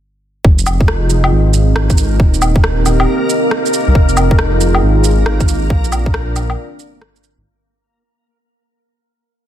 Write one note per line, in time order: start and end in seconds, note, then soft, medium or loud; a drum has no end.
0.44 1.09 F1 medium
0.44 7.47 A#3 medium
0.44 7.42 C4 medium
0.44 3.92 D#4 medium
0.44 2.18 F4 medium
0.44 2.18 G#4 medium
0.44 7.47 A#4 medium
0.44 2.18 D#5 medium
0.44 kick loud
0.59 shaker soft
0.66 low woodblock medium
0.66 shaker medium
0.81 kick loud
0.88 cross-stick loud
1.10 1.31 F1 medium
1.10 shaker medium
1.24 low woodblock medium
1.32 1.75 G#1 loud
1.54 shaker medium
1.76 2.21 G#1 medium
1.76 cross-stick loud
1.90 kick loud
1.90 shaker soft
1.98 shaker medium
2.19 2.85 D#1 medium
2.19 3.93 G4 medium
2.19 3.93 A#4 medium
2.19 5.66 D#5 medium
2.19 kick loud
2.34 shaker soft
2.42 low woodblock medium
2.42 shaker medium
2.56 kick loud
2.64 cross-stick loud
2.86 3.06 D#1 medium
2.86 low woodblock soft
2.86 shaker medium
3.00 low woodblock medium
3.30 shaker medium
3.51 cross-stick loud
3.66 shaker soft
3.74 shaker medium
3.88 3.94 C2 medium
3.95 4.60 F1 loud
3.95 5.68 D#4 medium
3.95 7.42 F4 medium
3.95 5.69 G#4 medium
3.95 kick loud
4.09 shaker soft
4.17 low woodblock medium
4.17 shaker medium
4.31 kick loud
4.39 cross-stick loud
4.61 4.81 F1 medium
4.61 shaker medium
4.75 low woodblock medium
4.83 5.26 G#1 loud
5.04 shaker medium
5.26 5.69 G#1 medium
5.26 cross-stick loud
5.40 kick loud
5.40 shaker soft
5.48 shaker medium
5.70 6.35 A#1 medium
5.70 7.44 D4 medium
5.70 7.44 A#4 medium
5.70 7.44 D5 medium
5.70 kick loud
5.84 shaker soft
5.92 low woodblock medium
5.92 shaker medium
6.06 kick loud
6.14 cross-stick loud
6.35 6.56 A#1 medium
6.35 low woodblock soft
6.35 shaker medium
6.50 low woodblock medium
6.80 shaker medium
7.02 cross-stick loud
7.16 shaker soft
7.24 shaker medium
7.37 7.45 G#1 loud